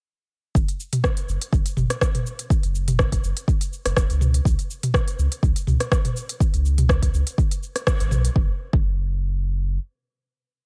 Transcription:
0.55 sub bass F#1, kick, shaker
0.68 closed hi-hat, shaker
0.80 shaker
0.93 closed hi-hat, mid tom, shaker
1.04 kick, cross-stick, shaker
1.17 closed hi-hat, shaker
1.28 sub bass F#1, shaker
1.42 closed hi-hat, shaker
1.53 sub bass F#1, kick, shaker
1.66 closed hi-hat, shaker
1.77 sub bass F#1, mid tom, shaker
1.90 cross-stick, closed hi-hat, shaker
2.01 kick, cross-stick, shaker
2.15 closed hi-hat, mid tom, shaker
2.27 shaker
2.39 closed hi-hat, shaker
2.50 kick, shaker
2.63 sub bass F#1, closed hi-hat, shaker
2.75 shaker
2.88 closed hi-hat, mid tom, shaker
2.99 kick, cross-stick, shaker
3.12 kick, closed hi-hat, shaker
3.24 sub bass F#1, shaker
3.37 closed hi-hat, shaker
3.48 kick, shaker
3.61 closed hi-hat, shaker
3.73 shaker
3.85 sub bass F#1, cross-stick, closed hi-hat, shaker
3.97 sub bass E1, kick, cross-stick, shaker
4.10 sub bass C#2, closed hi-hat, shaker
4.21 mid tom, shaker
4.34 closed hi-hat, shaker
4.45 sub bass C#2, kick, shaker
4.59 closed hi-hat, shaker
4.71 shaker
4.83 closed hi-hat, mid tom, shaker
4.94 kick, cross-stick, shaker
5.08 closed hi-hat, shaker
5.19 sub bass C#2, shaker
5.32 closed hi-hat, shaker
5.43 sub bass C#2, kick, shaker
5.56 closed hi-hat, shaker
5.67 sub bass C#2, mid tom, shaker
5.80 cross-stick, closed hi-hat, shaker
5.92 kick, cross-stick, shaker
6.05 closed hi-hat, mid tom, shaker
6.17 shaker
6.29 closed hi-hat, shaker
6.40 kick, shaker
6.54 sub bass C#2, closed hi-hat, shaker
6.66 shaker
6.78 closed hi-hat, mid tom, shaker
6.89 kick, cross-stick, shaker
7.02 kick, closed hi-hat, shaker
7.14 sub bass C#2, shaker
7.27 closed hi-hat, shaker
7.38 kick, shaker
7.51 closed hi-hat, shaker
7.63 shaker
7.76 cross-stick, closed hi-hat, shaker
7.87 kick, cross-stick, shaker
8.00 sub bass G#1, closed hi-hat, shaker
8.11 sub bass B1, mid tom, shaker
8.25 closed hi-hat, shaker
8.36 sub bass F#1, kick
8.73 sub bass F#1, kick

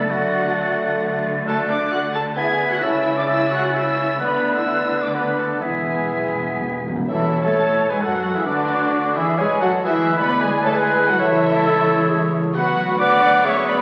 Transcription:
Already playing: french horn section D4, clarinet D5, flute A6
0.00 oboe A4, violin section A5
0.10 double bass section D2, cello section D3, viola section F#3, bassoon A3, french horn section A3, violin section F#4 F#5, oboe F#4
1.46 french horn section A3 F#4, viola section A3, violin section A4 A5, oboe A4, clarinet D5, flute F#6
1.69 viola section D4, violin section D5 D6, oboe D5
1.91 viola section F#4, oboe F#5, violin section F#5 F#6
2.14 viola section A4, violin section A5 A6, oboe A5
2.36 french horn section B3 E4, bassoon B3, viola section G#4, clarinet E5, oboe G#5, violin section G#5 G#6, flute B6
2.71 viola section F#4, oboe F#5, violin section F#5 F#6
2.80 double bass section C#2, cello section C#3, french horn section A3 E4, bassoon C#4, viola section E4, oboe E5, violin section E6, flute A6
2.85 violin section E5
3.17 viola section D4, violin section D5 D6, oboe D5
3.27 viola section E4, oboe E5, violin section E5 E6
3.51 viola section F#4, violin section F#5 F#6, oboe F#5
3.74 viola section E4, violin section E5 E6, oboe E5
4.17 double bass section D2, french horn section B3 D4, viola section B3, bassoon B3, oboe B4, violin section B4 B5, clarinet D5, flute F#6
4.21 cello section D3
4.54 viola section E4, oboe E5, violin section E5 E6
5.02 viola section D4, oboe D5, violin section D5 D6
5.14 viola section B3, french horn section B3 D4, bassoon B3, violin section B4 B5, oboe B4, clarinet D5, flute F#6
5.37 viola section A3, violin section A4 A5, oboe A4
5.61 double bass section E1, timpani E2, cello section E2, viola section G#3, french horn section B3 E4, bassoon B3, oboe G#4, violin section G#4 G#5, clarinet E5, flute B6
5.70 timpani E2
5.78 timpani E2
5.86 timpani E2
5.94 timpani E2
6.02 timpani E2
6.11 cello section F#2
6.18 timpani E2
6.25 timpani E2
6.34 timpani E2, cello section E2
6.41 timpani E2
6.49 timpani E2
6.57 cello section D2, timpani E2
6.65 timpani E2
6.73 timpani E2
6.80 timpani E2
6.84 cello section E2, timpani E2
6.96 timpani E2
7.07 double bass section E2, french horn section E3, cello section E3, viola section E4, violin section E4 E5, trumpet section E4, flute A4, clarinet C#5, oboe E5
7.42 double bass section A2, french horn section A3, cello section A3, viola section A4, trumpet section A4, violin section A4 A5, flute C#5, oboe A5
7.89 double bass section G#2, cello section G#3, french horn section G#3, viola section G#4, violin section G#4 G#5, trumpet section G#4, flute B4, oboe G#5
8.00 double bass section F#2, cello section F#3, french horn section F#3, viola section F#4, violin section F#4 F#5, trumpet section F#4, flute A4, clarinet A4, oboe F#5
8.34 double bass section E2, french horn section E3, cello section E3, viola section E4, trumpet section E4, violin section E4 E5, flute G#4, oboe E5
8.44 double bass section D2, french horn section D3, cello section D3, viola section D4, violin section D4 D5, trumpet section D4, flute F#4, clarinet B4, oboe D5
8.92 clarinet D5
9.15 double bass section E2, french horn section E3, cello section E3, violin section E4 E5, trumpet section E4, viola section E4, flute G#4, oboe E5
9.38 double bass section G#2, french horn section G#3, cello section G#3, trumpet section G#4, viola section G#4, violin section G#4 G#5, flute B4, clarinet C#5, oboe G#5
9.60 double bass section F#2, french horn section F#3, cello section F#3, trumpet section F#4, viola section F#4, violin section F#4 F#5, flute A4, oboe F#5
9.84 double bass section D2, cello section E3, french horn section G#3 E4, violin section E4 E5, viola section E4, flute G#4, trumpet section B4, clarinet B4, oboe E5
10.17 cello section B3, viola section B4, violin section B4 B5, flute D5, oboe B5
10.30 clarinet D5
10.40 cello section G#3, viola section G#4, violin section G#4 G#5, flute B4, oboe G#5
10.63 cello section A3, viola section A4, violin section A4 A5, flute C#5, oboe A5
10.74 cello section G#3, viola section G#4, violin section G#4 G#5, clarinet B4, flute B4, oboe G#5
11.08 cello section F#3, viola section F#4, violin section F#4 F#5, flute A4, oboe F#5
11.19 double bass section C#2, cello section E3, french horn section A3, viola section E4, violin section E4 E5, flute A4, clarinet C#5, trumpet section C#5, oboe E5
11.65 clarinet A4
12.09 clarinet G#4
12.54 double bass section D2, french horn section F#3 B3, cello section F#3, viola section F#4, clarinet F#4, violin section F#4 F#5, flute B4, trumpet section B4, oboe F#5
12.99 french horn section F#3 B3, cello section D4, trumpet section B4, clarinet B4, violin section D5 D6, viola section D5, flute F#5, oboe D6
13.44 cello section C#4, clarinet G#4, viola section C#5, violin section C#5 C#6, flute E5, oboe C#6
13.68 cello section B3, violin section B4 B5, viola section B4, flute D5, oboe B5

